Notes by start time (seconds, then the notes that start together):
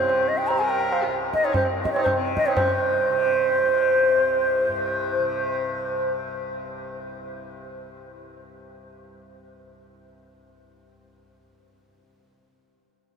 Already playing: C2 G2 C4 C5
0.00 C3
0.09 tabla na
0.28 D#5
0.38 D#4 G5
0.48 G4 A#5, tabla na
0.54 C3
0.59 A#4 G#5
0.69 G5
0.92 F5, tabla na
1.02 F4
1.07 C2
1.34 D#5, tabla ke
1.43 D#4 C#5, tabla na
1.54 C#4 C5, tabla na, tabla ge
1.60 G2
1.65 C4
1.84 D#5, tabla ke
1.92 C#5, tabla na
1.97 D#4
2.03 C#4 C5, tabla na, tabla ge
2.11 C3
2.17 C4
2.37 D#5, tabla ke
2.46 D#4 C#5, tabla na
2.55 G2 C#4 C5, tabla na, tabla ge
3.10 C3
3.63 C3
4.17 C2
4.68 G2
5.19 C3